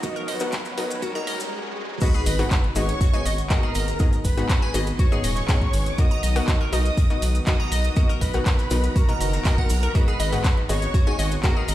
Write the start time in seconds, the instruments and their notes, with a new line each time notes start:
Already playing: analog synth pad D#3 F#3 F#4, synth texture F#4 F#5, analog synth lead D#5, riser
0.03 synth pluck B2 B3 D#4 F#4 A#4 D#5, analog synth pad C#4, synth arpeggio sound F#4, kick, closed hi-hat, cabasa
0.16 synth arpeggio sound A#4, closed hi-hat, cabasa
0.28 analog synth bass B1, analog synth lead B4, synth arpeggio sound D#5, closed hi-hat, open hi-hat
0.40 synth pluck B2 B3 D#4 F#4 A#4 F#5, closed hi-hat, cabasa
0.52 kick, snare, clap, closed hi-hat, cabasa
0.65 snare, closed hi-hat, cabasa
0.77 analog synth bass B1, synth pluck B2 B3 D#4 F#4 A#4 D#5, closed hi-hat, open hi-hat
0.90 closed hi-hat, cabasa
1.02 synth arpeggio sound F#4, analog synth lead A#4, kick, closed hi-hat, swell, cabasa
1.15 synth pluck B2 B3 D#4 F#4 A#4 D#5, synth arpeggio sound A#5, closed hi-hat, cabasa
1.27 analog synth bass B1, synth arpeggio sound D#5, closed hi-hat, open hi-hat
1.40 snare, closed hi-hat, cabasa
2.01 synth pluck G#2 B3 D#4 F#4 G#4 D#5, analog synth pad D#3 G#3 B3 F#4, synth arpeggio sound F#4, analog synth lead B4, violin section B5, kick, closed hi-hat, crash, sub drop, cabasa
2.14 synth arpeggio sound G#4, closed hi-hat, cabasa
2.26 analog synth bass G#1, synth arpeggio sound D#5, closed hi-hat, open hi-hat, cabasa
2.39 synth pluck G#2 B3 D#4 F#4 G#4 F#5, open hi-hat, cabasa
2.51 kick, snare, clap, closed hi-hat, cabasa
2.64 closed hi-hat
2.75 analog synth bass G#1, synth pluck G#2 B3 D#4 F#4 G#4 D#5, analog synth lead C#5, violin section C#6, closed hi-hat, open hi-hat, cabasa
2.88 closed hi-hat, cabasa
3.01 synth arpeggio sound F#4, kick, closed hi-hat, cabasa
3.14 synth pluck G#2 B3 D#4 F#4 G#4 D#5, synth arpeggio sound G#5, closed hi-hat, cabasa
3.25 analog synth bass G#1, synth arpeggio sound D#5, closed hi-hat, open hi-hat, cabasa
3.38 closed hi-hat, cabasa
3.50 synth pluck G#2 B3 D#4 F#4 G#4 D#5, synth arpeggio sound F#4, analog synth lead A#4, violin section A#5, kick, snare, clap, closed hi-hat, cabasa
3.63 synth arpeggio sound G#4, closed hi-hat
3.75 analog synth bass G#1, synth arpeggio sound D#5, closed hi-hat, open hi-hat, cabasa
3.88 closed hi-hat, cabasa
3.99 synth pluck G#2 B3 D#4 F#4 G#4 D#5, analog synth pad G#4, kick, closed hi-hat, cabasa
4.13 closed hi-hat, cabasa
4.25 analog synth bass G#1, analog synth lead B4, violin section B5, kick, closed hi-hat, open hi-hat, cabasa
4.37 synth pluck G#2 B3 D#4 F#4 G#4 F#5, closed hi-hat, cabasa
4.49 synth arpeggio sound F#4, kick, snare, clap, closed hi-hat, cabasa
4.62 synth arpeggio sound G#5, snare, closed hi-hat
4.74 analog synth bass G#1, synth pluck G#2 B3 D#4 F#4 G#4 D#5, synth arpeggio sound D#5, closed hi-hat, open hi-hat, cabasa
4.87 closed hi-hat, cabasa
4.99 synth arpeggio sound F#4, analog synth lead C#5, violin section C#6, kick, closed hi-hat, cabasa
5.12 synth pluck G#2 B3 D#4 F#4 G#4 D#5, synth arpeggio sound G#4, closed hi-hat, cabasa
5.24 analog synth bass D#1, synth arpeggio sound D#5, closed hi-hat, open hi-hat, cabasa
5.36 snare, closed hi-hat, cabasa
5.48 synth pluck G#2 B3 D#4 F#4 G#4 D#5, kick, snare, clap, closed hi-hat, open hi-hat, cabasa
5.62 kick, closed hi-hat
5.73 analog synth bass G#1, closed hi-hat, open hi-hat, cabasa
5.86 closed hi-hat, cabasa
5.98 synth pluck B2 B3 D#4 F#4 A#4 D#5, analog synth pad F#3 F#4, synth arpeggio sound F#4, analog synth lead D#5, violin section D#6, kick, closed hi-hat, cabasa
6.11 synth arpeggio sound A#5, closed hi-hat, cabasa
6.23 analog synth bass B1, synth arpeggio sound D#5, closed hi-hat, open hi-hat, cabasa
6.36 synth pluck B2 B3 D#4 F#4 A#4 F#5, open hi-hat, cabasa
6.47 synth arpeggio sound F#4, kick, snare, clap, closed hi-hat, cabasa
6.61 synth arpeggio sound A#4, closed hi-hat
6.72 analog synth bass B1, synth pluck B2 B3 D#4 F#4 A#4 D#5, analog synth lead D#5, synth arpeggio sound D#5, violin section D#6, closed hi-hat, open hi-hat, cabasa
6.85 closed hi-hat, cabasa
6.97 kick, closed hi-hat, cabasa
7.10 synth pluck B2 B3 D#4 F#4 A#4 D#5, closed hi-hat, cabasa
7.22 analog synth bass B1, closed hi-hat, open hi-hat, cabasa
7.35 closed hi-hat, cabasa
7.46 synth pluck B2 B3 D#4 F#4 A#4 D#5, synth arpeggio sound F#4, analog synth lead D#5, violin section D#6, kick, snare, clap, closed hi-hat, cabasa
7.60 synth arpeggio sound A#5, closed hi-hat
7.72 analog synth bass B1, synth arpeggio sound D#5, closed hi-hat, open hi-hat, cabasa
7.84 closed hi-hat, cabasa
7.96 synth pluck B2 B3 D#4 F#4 A#4 D#5, synth arpeggio sound F#4, kick, closed hi-hat, cabasa
8.09 synth arpeggio sound A#4, closed hi-hat, cabasa
8.21 analog synth bass B1, analog synth lead B4, synth arpeggio sound D#5, violin section B5, kick, closed hi-hat, open hi-hat, cabasa
8.33 synth pluck B2 B3 D#4 F#4 A#4 F#5, closed hi-hat, cabasa
8.46 kick, snare, clap, closed hi-hat, cabasa
8.58 snare, closed hi-hat, cabasa
8.71 analog synth bass B1, synth pluck B2 B3 D#4 F#4 A#4 D#5, closed hi-hat, open hi-hat, cabasa
8.84 closed hi-hat, cabasa
8.96 synth arpeggio sound F#4, analog synth lead A#4, violin section A#5, kick, closed hi-hat, cabasa
9.09 synth pluck B2 B3 D#4 F#4 A#4 D#5, synth arpeggio sound A#5, closed hi-hat, cabasa
9.20 analog synth bass F#1, synth arpeggio sound D#5, closed hi-hat, open hi-hat, cabasa
9.33 snare, closed hi-hat, cabasa
9.45 synth pluck B2 B3 D#4 F#4 A#4 D#5, synth arpeggio sound D#5, kick, snare, clap, closed hi-hat, open hi-hat, cabasa
9.58 synth arpeggio sound F#5, kick, closed hi-hat
9.69 analog synth bass B1, synth arpeggio sound A#5, closed hi-hat, open hi-hat, cabasa
9.83 synth arpeggio sound A#4, closed hi-hat, cabasa
9.95 synth pluck G#2 B3 D#4 F#4 G#4 D#5, analog synth pad G#3, synth arpeggio sound F#4, analog synth lead B4, violin section B5, kick, closed hi-hat, cabasa
10.08 synth arpeggio sound G#4, closed hi-hat, cabasa
10.19 analog synth bass G#1, synth arpeggio sound D#5, closed hi-hat, open hi-hat, cabasa
10.33 synth pluck G#2 B3 D#4 F#4 G#4 F#5, open hi-hat, cabasa
10.44 kick, snare, clap, closed hi-hat, cabasa
10.57 closed hi-hat
10.69 analog synth bass G#1, synth pluck G#2 B3 D#4 F#4 G#4 D#5, analog synth lead C#5, violin section C#6, closed hi-hat, open hi-hat, cabasa
10.82 closed hi-hat, cabasa
10.94 synth arpeggio sound F#4, kick, closed hi-hat, cabasa
11.07 synth pluck G#2 B3 D#4 F#4 G#4 D#5, synth arpeggio sound G#5, closed hi-hat, cabasa
11.19 analog synth bass G#1, synth arpeggio sound D#5, closed hi-hat, open hi-hat, cabasa
11.31 closed hi-hat, cabasa
11.43 synth pluck G#2 B3 D#4 F#4 G#4 D#5, synth arpeggio sound F#4, analog synth lead A#4, violin section A#5, kick, snare, clap, closed hi-hat, cabasa
11.56 synth arpeggio sound G#4, closed hi-hat
11.68 analog synth bass G#1, synth arpeggio sound D#5, closed hi-hat, open hi-hat, cabasa